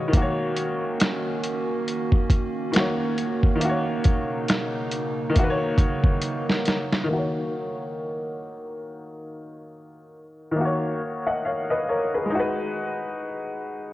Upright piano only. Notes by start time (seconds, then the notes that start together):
Already playing: G#3 D#4 F#4 B4 C#5 D#5 F5 F#5 G#5
0.08 D#3
0.13 A#3
0.17 F#4
0.22 C#5
2.72 D#3 A#3
2.76 F#4 C#5
3.56 D#3
3.60 A#3
3.65 F#4
3.69 C#5
5.30 D#3
5.34 A#3
5.39 F#4
5.43 B4
5.50 C#5
7.04 D#3
7.08 A#3
7.13 F#4
7.17 C#5
10.51 D#3
10.56 A#3
10.60 F#4
10.65 C#5
11.27 D#5 F#5
11.45 C#5 F5
11.70 B4 D#5
11.89 A#4 C#5
12.14 G#4 B4
12.26 G#3
12.30 D#4
12.35 F#4
12.39 B4